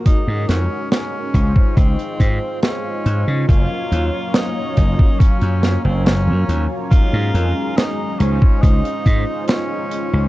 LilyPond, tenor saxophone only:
\new Staff \with { instrumentName = "Tenor saxophone" } { \time 4/4 \key ges \lydian \tempo 4 = 70 ees'8 des'8 des'4 c'4 des'4 | f'4 ees'4 des'8. c'16 des'8. r16 | f'4 ees'8 des'8 ees'4 des'4 | }